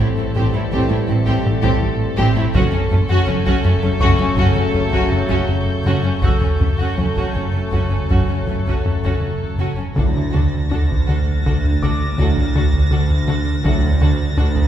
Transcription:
Already playing: synth drone A1, trombone section E3 G3, french horn section A3 C4, violin section A4, grand piano F#5
0.00 analog synth bass A2, viola section C4
0.18 cello section A2, violin section C4, viola section C4
0.35 double bass section A1, cello section A2, analog synth bass A2, viola section C4, violin section G4, taiko
0.54 cello section A2, viola section C4, violin section E4
0.72 double bass section A1, cello section A2, analog synth bass A2, viola section C4, violin section G4, taiko
0.90 cello section A2, viola section C4, violin section E4
1.08 double bass section A1, cello section A2, analog synth bass A2, violin section C4, viola section C4
1.26 cello section A2, viola section C4, violin section G4, taiko
1.46 analog synth bass A2
1.63 cello section A2, viola section C4, violin section G4, taiko
1.83 analog synth bass A2
2.17 double bass section A1, cello section A2, analog synth bass A2, viola section C4, violin section G4
2.36 cello section A2, viola section C4, violin section E4
2.53 synth drone F#1, double bass section F#1, cello section F#2, analog synth bass F#2, trombone section C#3 F#3, french horn section A3 C#4, viola section C#4, violin section F#4 A4 C#6, taiko
2.72 cello section F#2, violin section C#4, viola section C#4
2.90 double bass section F#1, cello section F#2, analog synth bass F#2, violin section A3, viola section C#4
3.09 cello section F#2, viola section C#4, violin section F#4
3.27 double bass section F#1, cello section F#2, analog synth bass F#3, violin section C#4 G6, viola section C#4
3.45 cello section F#2, viola section C#4, violin section F#4, taiko
3.64 double bass section F#1, analog synth bass F#2, cello section F#2, violin section C#4, viola section C#4
3.81 cello section F#2, violin section A3, viola section C#4
4.00 double bass section F#1, analog synth bass F#2, cello section F#2, viola section C#4, violin section F#4, grand piano C#6, taiko
4.19 cello section F#2, violin section C#4, viola section C#4
4.36 double bass section F#1, cello section F#2, analog synth bass F#2, viola section C#4, violin section F#4, taiko
4.55 cello section F#2, viola section C#4, violin section C#4
4.72 double bass section F#1, cello section F#2, analog synth bass F#2, violin section A3, viola section C#4
4.91 cello section F#2, viola section C#4, violin section F#4, taiko
5.12 analog synth bass F#2
5.29 cello section F#2, viola section C#4, violin section F#4, taiko
5.49 analog synth bass F#2
5.84 double bass section F#1, cello section F#2, analog synth bass F#2, viola section C#4, violin section F#4
6.03 cello section F#2, viola section C#4, violin section C#4
6.21 double bass section F#1, synth drone F#1, cello section F#2, analog synth bass F#2, trombone section C#3 F#3, french horn section A3 C#4, viola section C#4, violin section F#4 A4, grand piano E6, taiko
6.41 cello section F#2, violin section C#4, viola section C#4, taiko low
6.60 double bass section F#1, cello section F#2, analog synth bass F#2, violin section A3, viola section C#4, taiko low
6.78 cello section F#2, viola section C#4, violin section F#4
6.98 double bass section F#1, cello section F#2, analog synth bass F#3, violin section C#4, viola section C#4, taiko low
7.16 cello section F#2, viola section C#4, violin section F#4, taiko
7.33 double bass section F#1, cello section F#2, analog synth bass F#2, violin section C#4, viola section C#4
7.53 cello section F#2, violin section A3, viola section C#4
7.71 double bass section F#1, cello section F#2, analog synth bass F#2, viola section C#4, violin section F#4, taiko
7.90 cello section F#2, violin section C#4, viola section C#4, taiko low
7.99 violin section F#6
8.10 double bass section F#1, cello section F#2, analog synth bass F#2, viola section C#4, violin section F#4, taiko
8.29 cello section F#2, violin section C#4, viola section C#4
8.47 double bass section F#1, analog synth bass F#2, cello section F#2, violin section A3, viola section C#4, taiko low
8.67 cello section F#2, viola section C#4, violin section F#4, taiko
8.85 analog synth bass F#2, taiko low
9.04 cello section F#2, viola section C#4, violin section F#4, taiko
9.21 analog synth bass F#2
9.43 taiko low
9.58 double bass section F#1, analog synth bass F#2, cello section F#2, viola section C#4, violin section F#4
9.76 cello section F#2, violin section C#4, viola section C#4
9.96 cello section D2, synth drone D2, double bass section D2, trombone section A2 F#3, analog synth bass D3, french horn section A3 D4, viola section D4, violin section F#4 A4 A6 A#6, taiko
10.17 taiko low
10.31 analog synth bass D3, viola section D4, violin section F#4
10.35 violin section A4, taiko low
10.70 cello section D2, double bass section D2, analog synth bass D4, viola section D4, violin section F#4 A4, taiko low
10.91 taiko
11.07 analog synth bass D3, viola section D4, violin section F#4 A4
11.45 cello section D2, double bass section D2, analog synth bass D3, viola section D4, violin section F#4 A4, taiko
11.65 taiko low
11.82 analog synth bass D3, viola section D4, violin section F#4 A4, grand piano D6, taiko
12.18 cello section D2, double bass section D2, trombone section A2 F#3, analog synth bass D3, french horn section A3 D4, viola section D4, violin section F#4 A4, taiko low
12.37 taiko
12.55 analog synth bass D3, viola section D4, violin section F#4 A4, taiko low
12.73 taiko
12.90 cello section D2, double bass section D2, analog synth bass D3, viola section D4, violin section F#4 A4
13.10 taiko low
13.27 analog synth bass D3, viola section D4, violin section F#4 A4
13.64 cello section D2, synth drone D2, double bass section D2, trombone section A2 F#3, analog synth bass D3, french horn section A3 D4, viola section D4, violin section F#4 A4, taiko
13.83 taiko low
14.01 analog synth bass D3, viola section D4, violin section F#4 A4, taiko low
14.36 cello section D2, double bass section D2, analog synth bass D4, viola section D4, violin section F#4 A4, taiko low
14.56 taiko

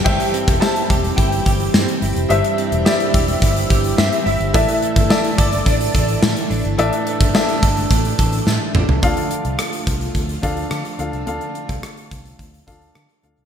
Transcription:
Already playing: string machine G3 G4, clean electric guitar B3 D4 G4
0.04 fingered electric bass G1, grand piano G2 G4 C5 E5 G5, clean electric guitar E3, string machine E3 C4, kick, crash
0.20 closed hi-hat
0.34 clean electric guitar C4, closed hi-hat
0.48 fingered electric bass E1, kick, closed hi-hat
0.60 clean electric guitar E4, grand piano G4 C5 E5 A5, snare, tambourine
0.76 closed hi-hat
0.90 fingered electric bass E1, clean electric guitar G4, kick, closed hi-hat
1.04 closed hi-hat
1.16 fingered electric bass G1, clean electric guitar E4, grand piano G5, kick, closed hi-hat
1.32 closed hi-hat
1.46 fingered electric bass G1, clean electric guitar G4, kick, closed hi-hat
1.60 closed hi-hat
1.74 fingered electric bass G2, clean electric guitar C4, snare, tambourine
1.88 closed hi-hat
2.02 fingered electric bass G1, clean electric guitar E4, open hi-hat
2.16 fingered electric bass F1, closed hi-hat
2.29 fingered electric bass G1, grand piano G2 G4 C5 E5, clean electric guitar E3, string machine D4, closed hi-hat
2.44 closed hi-hat
2.58 clean electric guitar C4, closed hi-hat
2.72 fingered electric bass E1, closed hi-hat
2.85 clean electric guitar E4, grand piano G4 C5 D5 E5, snare, tambourine
3.00 closed hi-hat
3.14 fingered electric bass E1, clean electric guitar G4, kick, closed hi-hat
3.28 closed hi-hat
3.42 fingered electric bass G1, clean electric guitar E4, kick, closed hi-hat
3.56 closed hi-hat
3.70 fingered electric bass G1, clean electric guitar G4, kick, closed hi-hat
3.84 closed hi-hat
3.97 fingered electric bass G2, clean electric guitar C4, grand piano E5, snare, tambourine
4.12 closed hi-hat
4.25 fingered electric bass G1, clean electric guitar E4, grand piano E5, open hi-hat
4.40 fingered electric bass G1, closed hi-hat
4.53 fingered electric bass A1, grand piano A2 A4 D5 E5, string machine D3 A3 E4, clean electric guitar E3, kick, closed hi-hat
4.68 closed hi-hat
4.82 clean electric guitar A3, closed hi-hat
4.96 fingered electric bass G1, kick, closed hi-hat
5.09 clean electric guitar D4, grand piano A4 D5 E5, snare, tambourine
5.24 closed hi-hat
5.38 fingered electric bass G1, clean electric guitar A4, grand piano D5, kick, closed hi-hat
5.52 closed hi-hat
5.66 fingered electric bass A1, clean electric guitar D4, grand piano D5, kick, closed hi-hat
5.81 closed hi-hat
5.94 fingered electric bass A1, clean electric guitar A4, kick, closed hi-hat
6.08 closed hi-hat
6.22 fingered electric bass A2, clean electric guitar A3, snare, tambourine
6.37 closed hi-hat
6.50 fingered electric bass A1, clean electric guitar D4, open hi-hat
6.65 fingered electric bass G1, closed hi-hat
6.78 fingered electric bass A1, grand piano A2 A4 D5 E5, clean electric guitar E3, string machine D4, closed hi-hat
6.93 closed hi-hat
7.06 clean electric guitar A3, closed hi-hat
7.21 fingered electric bass G1, kick, closed hi-hat
7.34 clean electric guitar C4, grand piano A4 D5 E5, snare, tambourine
7.49 clean electric guitar D4, closed hi-hat
7.63 fingered electric bass G1, clean electric guitar A4, kick, closed hi-hat
7.77 closed hi-hat
7.91 fingered electric bass A1, clean electric guitar D4, kick, closed hi-hat
8.05 closed hi-hat
8.19 fingered electric bass A1, clean electric guitar A4, kick, closed hi-hat
8.33 closed hi-hat
8.47 fingered electric bass A2, clean electric guitar A3, snare
8.75 fingered electric bass A1, clean electric guitar D4, mid tom
8.89 fingered electric bass C2, floor tom
9.02 fingered electric bass D2, grand piano D3 D4 F4 A4 F5, string machine D3 F3 A3 F4, kick, closed hi-hat
9.17 closed hi-hat
9.31 closed hi-hat
9.45 fingered electric bass C2, closed hi-hat
9.59 cross-stick, closed hi-hat
9.73 closed hi-hat
9.87 fingered electric bass C2, kick, closed hi-hat
10.01 closed hi-hat
10.15 fingered electric bass D2, kick, closed hi-hat
10.29 closed hi-hat
10.42 fingered electric bass D2, grand piano D4 F4 A4 F5, kick, closed hi-hat
10.57 closed hi-hat
10.71 fingered electric bass D3, cross-stick, closed hi-hat
10.85 closed hi-hat
10.98 fingered electric bass D2, grand piano D4 F4 A4 F5, closed hi-hat
11.13 fingered electric bass C2, closed hi-hat
11.26 fingered electric bass D2, grand piano D3 D4 F4 A4 F5, closed hi-hat
11.41 closed hi-hat
11.55 closed hi-hat
11.69 fingered electric bass C2, kick, closed hi-hat
11.83 cross-stick, closed hi-hat
11.97 closed hi-hat
12.11 fingered electric bass C2, kick, closed hi-hat
12.26 closed hi-hat
12.39 fingered electric bass D2, kick, closed hi-hat
12.54 closed hi-hat
12.67 fingered electric bass D2, grand piano D4 F4 A4 F5, kick, closed hi-hat
12.81 closed hi-hat
12.95 fingered electric bass D3, cross-stick, closed hi-hat
13.09 closed hi-hat
13.23 fingered electric bass D2, grand piano D4 F4 A4 F5, closed hi-hat
13.38 fingered electric bass C2, closed hi-hat

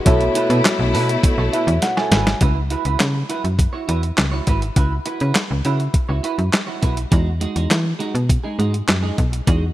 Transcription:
0.05 fm bass B1, string section B2 A3 E4, clean electric guitar E4 A4 B4, tine electric piano F#4 A4 C#5 E5, kick, closed hi-hat
0.21 closed hi-hat
0.35 clean electric guitar E4 A4 B4, closed hi-hat
0.50 fm bass B2, clean electric guitar E4 A4 B4, closed hi-hat
0.65 muted clean electric guitar stroke, snare, clap, closed hi-hat
0.79 fm bass B1, muted clean electric guitar stroke
0.93 fm bass B2, clean electric guitar E4 A4 B4, open hi-hat
1.09 muted clean electric guitar stroke, closed hi-hat
1.23 muted clean electric guitar stroke, kick, closed hi-hat
1.38 fm bass B1, clean electric guitar E4 A4 C#5
1.53 clean electric guitar E4 A4 B4, tine electric piano E5, closed hi-hat
1.67 fm bass E2, muted clean electric guitar stroke, closed hi-hat
1.82 tine electric piano F#5, muted clean electric guitar stroke, snare, closed hi-hat
1.97 clean electric guitar E4 A4 C#5, tine electric piano G#5, snare
2.11 fm bass G#1, clean electric guitar E4 A4 B4, snare, closed hi-hat
2.27 muted clean electric guitar stroke, snare, closed hi-hat
2.41 fm bass C#2, clean electric guitar E4 F#4 B4, kick, closed hi-hat
2.70 clean electric guitar E4 F#4 B4, closed hi-hat
2.85 fm bass C#2, clean electric guitar E4 F#4 B4, closed hi-hat
3.00 fm bass C#3, snare, clap, closed hi-hat
3.15 muted clean electric guitar stroke
3.29 clean electric guitar E4 F#4 B4, closed hi-hat
3.44 fm bass F#2, muted clean electric guitar stroke, closed hi-hat
3.59 muted clean electric guitar stroke, kick, closed hi-hat
3.73 clean electric guitar E4 F#4 C#5
3.88 fm bass E2, clean electric guitar E4 F#4 B4, closed hi-hat
4.03 muted clean electric guitar stroke, closed hi-hat
4.17 fm bass C#2, muted clean electric guitar stroke, snare, clap, closed hi-hat
4.32 clean electric guitar E4 F#4 C#5
4.47 fm bass G#1, clean electric guitar E4 F#4 B4, kick, closed hi-hat
4.62 muted clean electric guitar stroke, closed hi-hat
4.76 fm bass C#2, clean electric guitar E4 F#4 B4, kick, closed hi-hat
5.06 clean electric guitar E4 F#4 B4, closed hi-hat
5.20 fm bass C#3, clean electric guitar E4 F#4 B4, closed hi-hat
5.35 muted clean electric guitar stroke, snare, clap, closed hi-hat
5.50 fm bass C#2, muted clean electric guitar stroke
5.65 fm bass C#3, clean electric guitar E4 F#4 B4, closed hi-hat
5.80 muted clean electric guitar stroke, closed hi-hat
5.94 muted clean electric guitar stroke, kick, closed hi-hat
6.09 fm bass C#2, clean electric guitar E4 F#4 C#5
6.23 clean electric guitar E4 F#4 B4, closed hi-hat
6.38 fm bass F#2, muted clean electric guitar stroke, closed hi-hat
6.53 muted clean electric guitar stroke, snare, clap, closed hi-hat
6.67 clean electric guitar E4 F#4 C#5
6.82 fm bass B1, clean electric guitar E4 F#4 B4, kick, closed hi-hat
6.97 muted clean electric guitar stroke, closed hi-hat
7.11 fm bass E2, clean electric guitar G#3 D#4 F#4, kick, closed hi-hat
7.41 clean electric guitar G#3 D#4 F#4, closed hi-hat
7.56 fm bass E2, clean electric guitar G#3 D#4 F#4, closed hi-hat
7.70 fm bass E3, muted clean electric guitar stroke, snare, clap, closed hi-hat
7.85 muted clean electric guitar stroke
7.99 clean electric guitar G#3 D#4 F#4, closed hi-hat
8.15 fm bass B2, muted clean electric guitar stroke, closed hi-hat
8.29 muted clean electric guitar stroke, kick, closed hi-hat
8.44 clean electric guitar G#3 D#4 G#4
8.59 fm bass G#2, clean electric guitar G#3 D#4 F#4, closed hi-hat
8.73 muted clean electric guitar stroke, closed hi-hat
8.88 fm bass F#2, muted clean electric guitar stroke, snare, clap, closed hi-hat
9.03 clean electric guitar G#3 D#4 G#4
9.17 fm bass B1, muted clean electric guitar stroke, kick, closed hi-hat
9.32 muted clean electric guitar stroke, closed hi-hat
9.47 fm bass E2, clean electric guitar G#3 D#4 F#4, kick, closed hi-hat

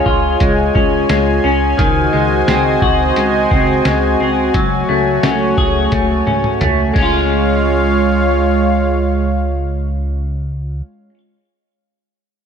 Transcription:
Already playing: clean electric guitar G#3 C#4, analog synth pad F4 G#4 C#5 G#5
0.06 analog synth bass C#2, clean electric guitar F4, kick
0.40 analog synth bass C#2, clean electric guitar G#3, kick, closed hi-hat
0.75 analog synth bass C#2, clean electric guitar C#4, kick
1.09 analog synth bass C#2, clean electric guitar G#3, snare, closed hi-hat
1.44 analog synth bass C#2, clean electric guitar C#4
1.78 analog synth bass C#2, clean electric guitar D#3, analog synth pad F#4 C5 D#5, kick, closed hi-hat
2.13 analog synth bass C#2, clean electric guitar G#3
2.48 analog synth bass C#2, clean electric guitar C4, snare, closed hi-hat
2.82 analog synth bass C#2, clean electric guitar F#4, kick
3.16 analog synth bass C#2, clean electric guitar G#3, closed hi-hat
3.51 analog synth bass C#2, clean electric guitar C4, kick
3.85 analog synth bass C#2, clean electric guitar G#3, snare, closed hi-hat
4.20 analog synth bass C#2, clean electric guitar C4
4.54 analog synth bass C#2, clean electric guitar F#3, analog synth pad A3 C#5, kick, closed hi-hat
4.89 analog synth bass C#2, clean electric guitar A3
5.23 analog synth bass C#2, clean electric guitar C#4, snare, closed hi-hat
5.58 analog synth bass C#2, clean electric guitar G#4, kick
5.92 analog synth bass C#2, clean electric guitar A3, kick, closed hi-hat, high tom
6.27 analog synth bass C#2, clean electric guitar C#4, mid tom
6.44 mid tom
6.61 analog synth bass C#2, clean electric guitar A3, closed hi-hat, mid tom
6.94 analog synth bass C#2, clean electric guitar G#3, analog synth pad F4 C#5 F5, kick, crash
6.98 analog synth pad G#3, clean electric guitar C#4
7.02 clean electric guitar F4

